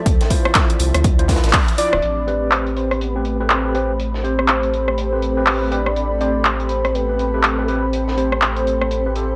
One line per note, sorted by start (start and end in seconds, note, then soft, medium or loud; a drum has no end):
0.00 1.99 F3 medium
0.00 1.99 C4 medium
0.00 0.31 A4 medium
0.00 1.99 D5 medium
0.00 1.99 E5 medium
0.06 0.18 D2 medium
0.06 kick loud
0.06 closed hi-hat medium
0.21 snare medium
0.21 closed hi-hat soft
0.30 1.15 E4 medium
0.30 1.16 F4 medium
0.30 1.16 C5 medium
0.30 kick medium
0.30 closed hi-hat medium
0.30 open hi-hat loud
0.45 cross-stick medium
0.55 kick loud
0.55 snare loud
0.55 clap loud
0.55 closed hi-hat medium
0.70 closed hi-hat soft
0.70 closed hi-hat medium
0.79 0.92 C2 loud
0.79 closed hi-hat medium
0.79 open hi-hat medium
0.94 1.40 D2 loud
0.94 cross-stick medium
0.94 closed hi-hat medium
1.04 kick loud
1.04 closed hi-hat medium
1.19 1.27 E4 medium
1.19 1.27 F4 medium
1.19 1.27 C5 medium
1.19 closed hi-hat soft
1.28 1.52 E4 medium
1.28 1.53 F4 medium
1.28 1.53 B4 medium
1.28 kick medium
1.28 snare medium
1.28 closed hi-hat medium
1.28 open hi-hat medium
1.36 snare medium
1.36 closed hi-hat medium
1.44 1.52 A1 loud
1.44 snare medium
1.44 closed hi-hat soft
1.44 closed hi-hat medium
1.48 snare medium
1.48 closed hi-hat medium
1.53 kick loud
1.53 snare loud
1.53 clap loud
1.53 closed hi-hat medium
1.53 open hi-hat medium
1.68 closed hi-hat soft
1.78 1.95 E4 medium
1.78 1.95 F4 medium
1.78 1.95 D5 loud
1.78 2.53 D5 loud
1.78 closed hi-hat medium
1.78 open hi-hat medium
1.93 2.01 D1 medium
1.93 cross-stick medium
2.02 9.36 A1 medium
2.02 9.36 A3 medium
2.02 9.36 C4 medium
2.02 9.36 G4 medium
2.02 9.36 B5 medium
2.02 closed hi-hat medium
2.27 3.12 C4 medium
2.27 3.12 G4 medium
2.27 3.12 B4 medium
2.27 closed hi-hat medium
2.51 9.36 A4 medium
2.51 2.76 C5 loud
2.51 clap loud
2.51 closed hi-hat medium
2.67 9.36 G5 medium
2.67 closed hi-hat soft
2.76 3.03 C5 loud
2.76 closed hi-hat medium
2.91 cross-stick medium
2.91 closed hi-hat soft
3.01 3.42 B4 loud
3.01 closed hi-hat medium
3.16 3.37 C4 medium
3.16 3.37 G4 medium
3.16 3.37 B4 medium
3.25 closed hi-hat medium
3.33 9.36 B5 medium
3.40 3.61 C4 medium
3.40 3.61 G4 medium
3.40 3.76 A4 medium
3.40 3.62 B4 medium
3.50 clap loud
3.50 closed hi-hat medium
3.65 3.73 C4 medium
3.65 3.73 G4 medium
3.65 3.73 B4 medium
3.75 3.91 C4 medium
3.75 3.91 G4 medium
3.75 3.91 B4 medium
3.75 5.73 C5 loud
3.75 closed hi-hat medium
4.00 closed hi-hat medium
4.14 snare medium
4.24 5.09 C4 medium
4.24 5.09 G4 medium
4.24 5.09 C5 medium
4.24 closed hi-hat medium
4.39 cross-stick medium
4.48 clap loud
4.48 closed hi-hat medium
4.63 closed hi-hat soft
4.74 closed hi-hat medium
4.88 cross-stick medium
4.98 closed hi-hat medium
5.12 5.34 C4 medium
5.12 5.34 G4 medium
5.12 5.34 B4 medium
5.22 closed hi-hat medium
5.37 5.58 C4 medium
5.37 5.58 G4 medium
5.37 5.58 B4 medium
5.46 clap loud
5.46 open hi-hat medium
5.62 5.70 C4 medium
5.62 5.70 G4 medium
5.62 5.70 B4 medium
5.71 5.88 C4 medium
5.71 5.88 G4 medium
5.71 5.88 B4 medium
5.71 6.20 D5 loud
5.71 closed hi-hat medium
5.86 cross-stick medium
5.96 closed hi-hat medium
6.20 7.06 C4 medium
6.20 7.06 G4 medium
6.20 7.06 C5 medium
6.20 6.47 D5 loud
6.20 closed hi-hat medium
6.45 6.96 C5 medium
6.45 clap loud
6.45 closed hi-hat medium
6.60 closed hi-hat soft
6.69 closed hi-hat medium
6.85 cross-stick medium
6.85 closed hi-hat soft
6.95 7.35 B4 loud
6.95 closed hi-hat medium
7.09 7.30 C4 medium
7.09 7.30 G4 medium
7.09 7.30 B4 medium
7.19 closed hi-hat medium
7.34 7.55 C4 medium
7.34 7.55 G4 medium
7.34 7.70 A4 medium
7.34 7.55 B4 medium
7.43 clap loud
7.43 closed hi-hat medium
7.58 7.67 C4 medium
7.58 7.67 G4 medium
7.58 7.67 B4 medium
7.68 7.85 C4 medium
7.68 7.85 G4 medium
7.68 7.85 B4 medium
7.68 9.36 C5 loud
7.68 closed hi-hat medium
7.93 closed hi-hat medium
8.08 snare medium
8.17 9.02 C4 medium
8.17 9.02 G4 medium
8.17 9.03 C5 medium
8.17 closed hi-hat medium
8.32 cross-stick medium
8.42 clap loud
8.42 closed hi-hat medium
8.56 closed hi-hat soft
8.67 closed hi-hat medium
8.81 cross-stick medium
8.91 closed hi-hat medium
9.06 9.14 C4 medium
9.06 9.14 G4 medium
9.06 9.14 B4 medium
9.16 9.36 C4 medium
9.16 9.36 G4 medium
9.16 9.36 A4 medium
9.16 closed hi-hat medium